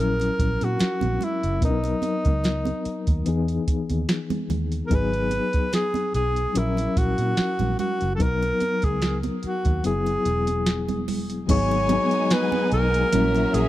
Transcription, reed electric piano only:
0, 0, Header, 1, 2, 480
1, 0, Start_track
1, 0, Key_signature, 5, "minor"
1, 0, Tempo, 821918
1, 947, Time_signature, 4, 2, 24, 8
1, 7992, End_track
2, 0, Start_track
2, 0, Title_t, "Reed electric piano"
2, 0, Program_c, 0, 4
2, 0, Note_on_c, 0, 54, 61
2, 0, Note_on_c, 0, 61, 57
2, 0, Note_on_c, 0, 64, 54
2, 0, Note_on_c, 0, 70, 65
2, 92, Control_c, 0, 64, 127
2, 806, Note_off_c, 0, 54, 0
2, 810, Note_off_c, 0, 61, 0
2, 814, Note_off_c, 0, 64, 0
2, 816, Note_off_c, 0, 70, 0
2, 938, Note_on_c, 0, 54, 62
2, 947, Note_on_c, 0, 59, 64
2, 952, Note_on_c, 0, 61, 49
2, 955, Control_c, 0, 64, 0
2, 962, Note_on_c, 0, 70, 83
2, 990, Note_off_c, 0, 61, 0
2, 992, Note_on_c, 0, 63, 64
2, 1048, Control_c, 0, 64, 127
2, 1767, Note_off_c, 0, 54, 0
2, 1771, Note_off_c, 0, 59, 0
2, 1778, Note_off_c, 0, 70, 0
2, 1793, Note_off_c, 0, 63, 0
2, 1895, Note_on_c, 0, 52, 73
2, 1904, Note_on_c, 0, 59, 74
2, 1910, Note_on_c, 0, 63, 66
2, 1914, Control_c, 0, 64, 0
2, 1919, Note_on_c, 0, 68, 83
2, 2009, Control_c, 0, 64, 127
2, 2725, Note_off_c, 0, 52, 0
2, 2730, Note_off_c, 0, 59, 0
2, 2733, Note_off_c, 0, 63, 0
2, 2737, Note_off_c, 0, 68, 0
2, 2856, Note_on_c, 0, 54, 69
2, 2862, Note_on_c, 0, 59, 68
2, 2869, Note_on_c, 0, 63, 64
2, 2873, Control_c, 0, 64, 0
2, 2878, Note_on_c, 0, 68, 85
2, 2973, Control_c, 0, 64, 127
2, 3686, Note_off_c, 0, 54, 0
2, 3689, Note_off_c, 0, 59, 0
2, 3692, Note_off_c, 0, 63, 0
2, 3697, Note_off_c, 0, 68, 0
2, 3816, Note_on_c, 0, 54, 67
2, 3822, Note_on_c, 0, 61, 59
2, 3832, Note_on_c, 0, 64, 59
2, 3836, Control_c, 0, 64, 0
2, 3837, Note_on_c, 0, 70, 70
2, 3951, Control_c, 0, 64, 127
2, 4646, Note_off_c, 0, 54, 0
2, 4649, Note_off_c, 0, 61, 0
2, 4654, Note_off_c, 0, 64, 0
2, 4656, Note_off_c, 0, 70, 0
2, 4777, Note_on_c, 0, 54, 72
2, 4783, Note_on_c, 0, 59, 65
2, 4790, Note_on_c, 0, 63, 61
2, 4796, Control_c, 0, 64, 0
2, 4799, Note_on_c, 0, 70, 76
2, 4893, Control_c, 0, 64, 127
2, 5606, Note_off_c, 0, 54, 0
2, 5610, Note_off_c, 0, 59, 0
2, 5613, Note_off_c, 0, 63, 0
2, 5618, Note_off_c, 0, 70, 0
2, 5740, Note_on_c, 0, 54, 58
2, 5749, Note_on_c, 0, 59, 60
2, 5755, Control_c, 0, 64, 0
2, 5756, Note_on_c, 0, 64, 61
2, 5763, Note_on_c, 0, 68, 68
2, 5873, Control_c, 0, 64, 127
2, 6568, Note_off_c, 0, 54, 0
2, 6572, Note_off_c, 0, 59, 0
2, 6576, Note_off_c, 0, 64, 0
2, 6579, Note_off_c, 0, 68, 0
2, 6696, Note_on_c, 0, 54, 75
2, 6701, Note_on_c, 0, 56, 74
2, 6707, Note_on_c, 0, 59, 67
2, 6712, Note_on_c, 0, 63, 76
2, 6716, Control_c, 0, 64, 0
2, 6718, Note_on_c, 0, 68, 80
2, 6831, Control_c, 0, 64, 127
2, 6908, Note_off_c, 0, 54, 0
2, 6911, Note_off_c, 0, 56, 0
2, 6914, Note_off_c, 0, 59, 0
2, 6917, Note_off_c, 0, 63, 0
2, 6919, Note_off_c, 0, 68, 0
2, 6943, Note_on_c, 0, 54, 66
2, 6947, Note_on_c, 0, 56, 55
2, 6953, Note_on_c, 0, 59, 61
2, 6961, Note_on_c, 0, 63, 63
2, 6966, Note_on_c, 0, 68, 75
2, 7565, Note_off_c, 0, 54, 0
2, 7567, Note_off_c, 0, 56, 0
2, 7570, Note_off_c, 0, 59, 0
2, 7574, Note_off_c, 0, 63, 0
2, 7577, Note_off_c, 0, 68, 0
2, 7658, Note_on_c, 0, 54, 72
2, 7662, Note_on_c, 0, 58, 62
2, 7668, Note_on_c, 0, 61, 64
2, 7673, Note_on_c, 0, 64, 69
2, 7674, Control_c, 0, 64, 0
2, 7679, Note_on_c, 0, 70, 83
2, 7761, Control_c, 0, 64, 127
2, 7992, Note_off_c, 0, 54, 0
2, 7992, Note_off_c, 0, 58, 0
2, 7992, Note_off_c, 0, 61, 0
2, 7992, Note_off_c, 0, 64, 0
2, 7992, Note_off_c, 0, 70, 0
2, 7992, End_track
0, 0, End_of_file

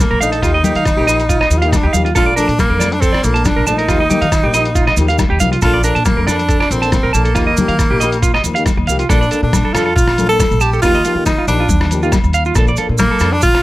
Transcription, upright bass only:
0, 0, Header, 1, 2, 480
1, 0, Start_track
1, 0, Key_signature, -2, "major"
1, 0, Tempo, 433526
1, 474, Time_signature, 4, 2, 24, 8
1, 15087, End_track
2, 0, Start_track
2, 0, Title_t, "Upright bass"
2, 0, Program_c, 0, 32
2, 122, Note_on_c, 0, 34, 95
2, 213, Note_off_c, 0, 34, 0
2, 231, Note_on_c, 0, 34, 76
2, 428, Note_off_c, 0, 34, 0
2, 472, Note_on_c, 0, 39, 94
2, 772, Note_off_c, 0, 39, 0
2, 837, Note_on_c, 0, 51, 81
2, 1034, Note_off_c, 0, 51, 0
2, 1080, Note_on_c, 0, 34, 79
2, 1562, Note_off_c, 0, 34, 0
2, 1664, Note_on_c, 0, 39, 85
2, 1967, Note_off_c, 0, 39, 0
2, 2036, Note_on_c, 0, 39, 89
2, 2129, Note_off_c, 0, 39, 0
2, 2148, Note_on_c, 0, 39, 81
2, 2345, Note_off_c, 0, 39, 0
2, 2388, Note_on_c, 0, 34, 76
2, 2689, Note_off_c, 0, 34, 0
2, 2748, Note_on_c, 0, 46, 84
2, 2948, Note_off_c, 0, 46, 0
2, 2990, Note_on_c, 0, 41, 83
2, 3475, Note_off_c, 0, 41, 0
2, 3588, Note_on_c, 0, 34, 87
2, 3889, Note_off_c, 0, 34, 0
2, 3950, Note_on_c, 0, 34, 82
2, 4045, Note_off_c, 0, 34, 0
2, 4065, Note_on_c, 0, 34, 79
2, 4263, Note_off_c, 0, 34, 0
2, 4303, Note_on_c, 0, 39, 91
2, 4606, Note_off_c, 0, 39, 0
2, 4671, Note_on_c, 0, 51, 81
2, 4869, Note_off_c, 0, 51, 0
2, 4912, Note_on_c, 0, 34, 84
2, 5396, Note_off_c, 0, 34, 0
2, 5503, Note_on_c, 0, 39, 98
2, 5806, Note_off_c, 0, 39, 0
2, 5875, Note_on_c, 0, 39, 85
2, 5967, Note_off_c, 0, 39, 0
2, 5989, Note_on_c, 0, 36, 82
2, 6185, Note_off_c, 0, 36, 0
2, 6223, Note_on_c, 0, 34, 92
2, 6526, Note_off_c, 0, 34, 0
2, 6595, Note_on_c, 0, 46, 81
2, 6792, Note_off_c, 0, 46, 0
2, 6838, Note_on_c, 0, 41, 82
2, 7320, Note_off_c, 0, 41, 0
2, 7424, Note_on_c, 0, 34, 92
2, 7727, Note_off_c, 0, 34, 0
2, 7796, Note_on_c, 0, 34, 84
2, 7889, Note_off_c, 0, 34, 0
2, 7911, Note_on_c, 0, 34, 80
2, 8107, Note_off_c, 0, 34, 0
2, 8147, Note_on_c, 0, 39, 85
2, 8449, Note_off_c, 0, 39, 0
2, 8509, Note_on_c, 0, 51, 73
2, 8710, Note_off_c, 0, 51, 0
2, 8753, Note_on_c, 0, 34, 86
2, 9238, Note_off_c, 0, 34, 0
2, 9345, Note_on_c, 0, 39, 87
2, 9649, Note_off_c, 0, 39, 0
2, 9713, Note_on_c, 0, 39, 88
2, 9807, Note_off_c, 0, 39, 0
2, 9821, Note_on_c, 0, 36, 70
2, 10022, Note_off_c, 0, 36, 0
2, 10073, Note_on_c, 0, 34, 100
2, 10269, Note_off_c, 0, 34, 0
2, 10438, Note_on_c, 0, 46, 85
2, 10635, Note_off_c, 0, 46, 0
2, 10786, Note_on_c, 0, 41, 81
2, 10984, Note_off_c, 0, 41, 0
2, 11027, Note_on_c, 0, 34, 78
2, 11525, Note_off_c, 0, 34, 0
2, 11638, Note_on_c, 0, 34, 97
2, 11926, Note_off_c, 0, 34, 0
2, 11994, Note_on_c, 0, 39, 97
2, 12189, Note_off_c, 0, 39, 0
2, 12348, Note_on_c, 0, 51, 83
2, 12549, Note_off_c, 0, 51, 0
2, 12700, Note_on_c, 0, 34, 80
2, 12901, Note_off_c, 0, 34, 0
2, 12943, Note_on_c, 0, 39, 95
2, 13442, Note_off_c, 0, 39, 0
2, 13548, Note_on_c, 0, 39, 97
2, 13839, Note_off_c, 0, 39, 0
2, 13902, Note_on_c, 0, 34, 105
2, 14101, Note_off_c, 0, 34, 0
2, 14275, Note_on_c, 0, 46, 87
2, 14473, Note_off_c, 0, 46, 0
2, 14619, Note_on_c, 0, 41, 84
2, 14820, Note_off_c, 0, 41, 0
2, 14863, Note_on_c, 0, 34, 82
2, 15087, Note_off_c, 0, 34, 0
2, 15087, End_track
0, 0, End_of_file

